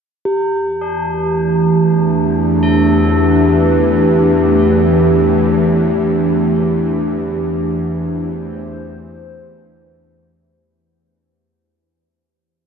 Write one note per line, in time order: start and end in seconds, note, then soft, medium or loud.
0.25 10.82 E2 medium
0.25 10.82 E3 medium
0.25 5.48 E3 medium
0.25 10.71 G4 medium
0.81 8.64 D4 medium
1.01 10.69 A3 medium
1.01 10.69 D4 medium
1.78 10.69 G4 medium
2.61 10.45 A4 medium
2.61 5.47 B4 medium
7.82 10.69 C5 medium